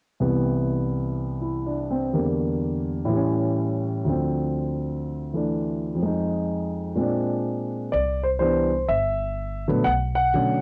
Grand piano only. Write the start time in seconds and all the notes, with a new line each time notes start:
0.20 C2 C3 E3 B3
1.41 E4
1.66 D4
1.91 C4
2.13 E2 D3 G3 A#3
3.05 A2
3.09 E3 G3
3.16 C#4
4.05 D2 D3 F3
4.09 C4
5.34 E3 A3 D4
5.95 F2 F3
6.02 G#3 D#4
6.95 A#2 G#3 C4
7.00 D4
7.92 D5
8.24 C5
8.39 E3 G3 B3 D4 C5
8.88 E5
9.68 D3 F#3 A3 B3
9.84 F#5
10.15 F#5
10.34 D3 F#3 A3 C#4